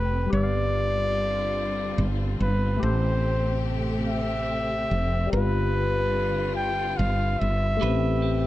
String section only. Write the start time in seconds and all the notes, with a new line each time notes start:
Already playing: C3 A3 C4 G4
0.30 D3 G3 F4
2.80 C3 A3 G4
5.31 D3 G3 F4
7.81 C3 A3 G4